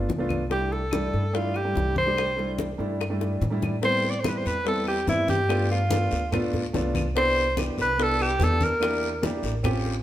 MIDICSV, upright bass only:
0, 0, Header, 1, 2, 480
1, 0, Start_track
1, 0, Key_signature, 0, "major"
1, 0, Tempo, 415512
1, 586, Time_signature, 4, 2, 24, 8
1, 11584, End_track
2, 0, Start_track
2, 0, Title_t, "Upright bass"
2, 0, Program_c, 0, 32
2, 101, Note_on_c, 0, 36, 87
2, 1235, Note_off_c, 0, 36, 0
2, 1309, Note_on_c, 0, 43, 76
2, 1983, Note_off_c, 0, 43, 0
2, 2027, Note_on_c, 0, 36, 85
2, 3159, Note_off_c, 0, 36, 0
2, 3221, Note_on_c, 0, 43, 74
2, 3899, Note_off_c, 0, 43, 0
2, 3941, Note_on_c, 0, 45, 88
2, 5076, Note_off_c, 0, 45, 0
2, 5147, Note_on_c, 0, 40, 88
2, 5822, Note_off_c, 0, 40, 0
2, 5857, Note_on_c, 0, 43, 92
2, 6992, Note_off_c, 0, 43, 0
2, 7065, Note_on_c, 0, 38, 85
2, 7740, Note_off_c, 0, 38, 0
2, 7788, Note_on_c, 0, 36, 88
2, 8917, Note_off_c, 0, 36, 0
2, 8982, Note_on_c, 0, 36, 86
2, 9658, Note_off_c, 0, 36, 0
2, 9697, Note_on_c, 0, 40, 95
2, 10830, Note_off_c, 0, 40, 0
2, 10889, Note_on_c, 0, 33, 83
2, 11569, Note_off_c, 0, 33, 0
2, 11584, End_track
0, 0, End_of_file